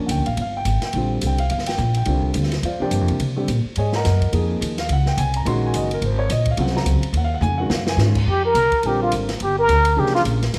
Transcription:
Already playing: F3 A#3 C#4 D4
0.06 D2 F#5, hi-hat pedal, ride
0.11 G5
0.18 C2
0.26 A#1 F5, ride
0.37 G1, ride
0.41 F5
0.57 G5
0.65 G#1, hi-hat pedal, ride
0.82 G5, muted upright bass stroke, snare, ride
0.93 A#1 D3 G3 C4 F4, ride
1.21 C2, hi-hat pedal, ride
1.27 G5
1.38 F5, ride
1.50 G1 F5, ride
1.58 snare
1.66 G5, snare, ride
1.77 A#1, hi-hat pedal
1.94 G5, ride
2.05 C2 D3 G3 C4 F4, ride
2.22 kick
2.34 D2, hi-hat pedal, ride
2.43 snare
2.52 snare, ride
2.63 F2 F4 C5 D5 F5, ride
2.80 C3 F3 A#3 D4 G4 C5 D5 G5, muted upright bass stroke
2.91 G2, hi-hat pedal, ride
3.01 F2
3.08 C2, ride
3.20 C3, ride
3.36 D3 G3 C4 G4
3.48 A#2, hi-hat pedal, ride
3.65 muted upright bass stroke
3.76 G#2 G#4 C#5 D#5 G#5, ride
3.92 F#5 A#5, snare
3.97 A#4 D#5
4.05 F#2, snare, hi-hat pedal, ride
4.21 kick, ride
4.32 F2 F3 A#3 D#4 G#4, ride
4.61 D#2, hi-hat pedal, ride
4.78 F5, snare, ride
4.89 C#2 F#5, ride
5.06 G5, snare
5.17 C2 G#5, hi-hat pedal, ride
5.34 A#5, ride
5.45 A#1 D#3 G#3 C#4 F#4 C6, ride
5.66 G#5
5.74 F#1 D#5, hi-hat pedal, ride
5.91 A#4, ride
6.02 G#1 C5, ride
6.19 C#5
6.30 A#1 D#5, hi-hat pedal, ride
6.45 kick, ride
6.51 F5
6.57 C2 C#3 F#3 C4 F4 F#5, ride
6.67 snare
6.77 A#5, snare
6.85 C#2, hi-hat pedal, ride
7.01 muted upright bass stroke, ride
7.13 D#2, ride
7.17 F#5
7.24 F5
7.34 F#5
7.41 F2 G#5, hi-hat pedal, mid tom
7.58 D#3 G#3 C#4 F#4 F#5
7.70 F#2 F5, snare
7.87 G#5, snare
7.97 G#2 D#3 G#3 C#4, snare, hi-hat pedal
8.01 F4
8.15 kick, crash
8.26 F2 G4
8.45 A#4
8.54 C2, hi-hat pedal, ride
8.72 muted upright bass stroke, kick, ride
8.83 A#1 D3 G3 C4 F4 G4 A#4, ride
9.02 F4
9.12 G#1, hi-hat pedal, ride
9.29 snare, ride
9.40 G1 G4, ride
9.59 A#4
9.68 D2, hi-hat pedal, ride
9.85 ride
9.96 C2 F3 A#3 C#4 D4 G4 G#4
10.06 snare
10.15 F4, snare
10.25 A#1, hi-hat pedal, ride
10.42 snare, ride
10.54 C2, snare, ride

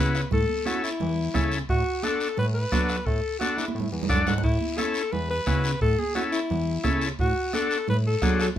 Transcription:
Already playing: C#3 C#4 E4 F#4 B4
0.15 bombo rim, short guiro
0.31 A2 A4, bombo low, low conga, long guiro
0.49 high conga
0.65 C#4 E4 F#4 A4, bombo rim, high conga, short guiro
0.84 E4, short guiro
1.00 E2, low conga, long guiro
1.34 C#3 C#4 E4 A4, bombo low, bombo rim, high conga, low conga, short guiro
1.52 short guiro
1.69 A2 F#4, bombo low, long guiro
2.03 D4 F#4 A4, bombo rim, high conga, short guiro
2.20 short guiro
2.37 A2 B4, low conga, long guiro
2.55 B4
2.72 F#3 D4 F#4 A4, bombo low, bombo rim, high conga, short guiro
2.89 bombo rim, short guiro
3.06 A2 A4, bombo low, long guiro
3.39 D4 F#4 A4, bombo rim, high conga, short guiro
3.57 E4, high conga, short guiro
3.68 high conga
3.75 A2, long guiro
3.80 low conga
3.92 E2, low conga
4.03 low conga
4.09 F#2 D4 F#4 A4 D5, bombo low, bombo rim, short guiro
4.15 low conga
4.26 G#2 F#5, bombo rim, low conga, short guiro
4.38 low conga
4.43 A2 E4, bombo low, long guiro
4.61 high conga
4.78 C#4 E4 A4, bombo rim, high conga, short guiro
4.94 short guiro
5.12 E2 B4, low conga, long guiro
5.31 B4
5.46 C#3 C#4 E4 F#4, bombo low, bombo rim, high conga, short guiro
5.64 short guiro
5.81 A2 A4, bombo low, long guiro
5.99 G#4, high conga
6.15 C#4 E4 F#4 A4, bombo rim, high conga, short guiro
6.32 E4, short guiro
6.50 E2, low conga, long guiro
6.84 C#3 C#4 E4 A4, bombo low, bombo rim, high conga, short guiro
7.01 short guiro
7.19 A2 F#4, bombo low, long guiro
7.53 D4 F#4 A4, bombo rim, high conga, short guiro
7.71 short guiro
7.88 A2 B4, low conga, long guiro
8.07 A4
8.22 F#3 D4 F#4 G#4, bombo low, bombo rim, high conga, short guiro
8.39 A4, bombo rim, short guiro

